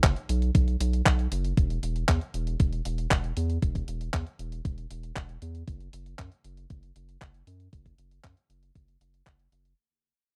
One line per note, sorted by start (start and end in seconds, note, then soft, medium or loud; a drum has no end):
0.04 0.14 F#1 medium
0.04 kick loud
0.04 clap loud
0.04 closed hi-hat medium
0.16 closed hi-hat soft
0.29 0.50 B1 medium
0.29 closed hi-hat medium
0.42 closed hi-hat soft
0.55 0.76 B1 medium
0.55 kick loud
0.55 closed hi-hat medium
0.68 closed hi-hat soft
0.80 1.02 B1 medium
0.80 closed hi-hat medium
0.93 closed hi-hat soft
1.06 1.27 B1 medium
1.06 kick loud
1.06 clap loud
1.06 closed hi-hat medium
1.19 closed hi-hat soft
1.32 1.53 F#1 medium
1.32 closed hi-hat medium
1.45 closed hi-hat soft
1.57 1.79 E1 loud
1.57 kick loud
1.57 closed hi-hat medium
1.70 closed hi-hat soft
1.83 2.04 E1 medium
1.83 closed hi-hat medium
1.96 closed hi-hat soft
2.09 2.19 E2 medium
2.09 kick loud
2.09 clap loud
2.09 closed hi-hat medium
2.21 closed hi-hat soft
2.34 2.55 E1 medium
2.34 closed hi-hat medium
2.47 closed hi-hat soft
2.60 2.81 E1 medium
2.60 kick loud
2.60 closed hi-hat medium
2.73 closed hi-hat soft
2.85 3.07 E1 medium
2.85 closed hi-hat medium
2.98 closed hi-hat soft
3.11 3.32 E1 medium
3.11 kick loud
3.11 clap loud
3.11 closed hi-hat medium
3.24 closed hi-hat soft
3.37 3.58 E2 medium
3.37 closed hi-hat medium
3.50 closed hi-hat soft
3.62 3.84 E1 medium
3.62 kick loud
3.62 closed hi-hat medium
3.75 kick medium
3.75 closed hi-hat soft
3.88 4.09 E1 medium
3.88 closed hi-hat medium
4.01 closed hi-hat soft
4.14 4.24 E2 medium
4.14 kick loud
4.14 clap loud
4.14 closed hi-hat medium
4.27 closed hi-hat soft
4.39 4.61 E1 medium
4.39 closed hi-hat medium
4.52 closed hi-hat soft
4.65 4.86 E1 medium
4.65 kick loud
4.65 closed hi-hat medium
4.78 closed hi-hat soft
4.91 5.12 E1 medium
4.91 closed hi-hat medium
5.03 closed hi-hat soft
5.16 5.38 E1 medium
5.16 kick loud
5.16 clap loud
5.16 closed hi-hat medium
5.29 closed hi-hat soft
5.42 5.63 E2 medium
5.42 closed hi-hat medium
5.55 closed hi-hat soft
5.68 5.89 F#1 loud
5.68 kick loud
5.68 closed hi-hat medium
5.80 closed hi-hat soft
5.93 6.15 F#1 medium
5.93 closed hi-hat medium
6.06 closed hi-hat soft
6.19 6.30 F#2 medium
6.19 kick loud
6.19 clap loud
6.19 closed hi-hat medium
6.32 closed hi-hat soft
6.44 6.66 F#1 medium
6.44 closed hi-hat medium
6.57 closed hi-hat soft
6.70 6.91 F#1 medium
6.70 kick loud
6.70 closed hi-hat medium
6.83 closed hi-hat soft
6.96 7.17 F#1 medium
6.96 closed hi-hat medium
7.09 closed hi-hat soft
7.22 7.43 F#1 medium
7.22 kick medium
7.22 clap loud
7.22 closed hi-hat medium
7.34 closed hi-hat soft
7.47 7.68 F#2 medium
7.47 closed hi-hat medium
7.60 closed hi-hat soft
7.73 7.94 F#1 loud
7.73 kick loud
7.73 closed hi-hat medium
7.86 kick medium
7.86 closed hi-hat soft
7.98 8.20 F#1 medium
7.98 closed hi-hat medium
8.11 closed hi-hat soft
8.24 8.35 F#2 medium
8.24 kick loud
8.24 clap loud
8.24 closed hi-hat medium
8.37 closed hi-hat soft
8.50 8.71 F#1 medium
8.50 closed hi-hat medium
8.63 closed hi-hat soft
8.75 8.97 F#1 medium
8.75 kick loud
8.75 closed hi-hat medium
8.88 closed hi-hat soft
9.01 9.22 F#1 medium
9.01 closed hi-hat medium
9.14 closed hi-hat soft
9.27 9.48 F#1 medium
9.27 kick medium
9.27 clap loud
9.27 closed hi-hat medium
9.39 closed hi-hat soft
9.52 9.73 F#1 medium
9.52 closed hi-hat medium
9.65 closed hi-hat soft